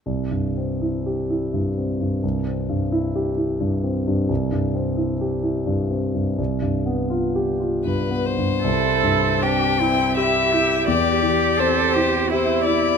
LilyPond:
<<
  \new Staff \with { instrumentName = "Violin" } { \time 3/4 \key c \major \tempo 4 = 84 r2. | r2. | r2. | r2 b'8 c''8~ |
c''4 g''4 e''4 | d''4 c''4 c''8 d''8 | }
  \new Staff \with { instrumentName = "Cello" } { \time 3/4 \key c \major r2. | r2. | r2. | r2. |
a'4 g'8 e'8 g'8 e'8 | g'4 a'8 g'8 e'4 | }
  \new Staff \with { instrumentName = "Viola" } { \time 3/4 \key c \major r2. | r2. | r2. | r2. |
e'4 d'8 c'8 e'8 g'8 | g'2 e'4 | }
  \new Staff \with { instrumentName = "Grand piano" } { \time 3/4 \key c \major \tuplet 3/2 { c,8 g,8 c'8 e'8 g'8 e'8 g,8 c'8 g,8 } | \tuplet 3/2 { c,8 c'8 g,8 e'8 g'8 e'8 g,8 c'8 g,8 } | \tuplet 3/2 { c,8 g,8 c'8 e'8 g'8 e'8 g,8 c'8 g,8 } | \tuplet 3/2 { c,8 g,8 b8 f'8 g'8 f'8 g,8 b8 g,8 } |
c,8 g,8 c'8 e'8 g'8 e'8 | e,8 e8 c'8 e'8 g'8 e'8 | }
>>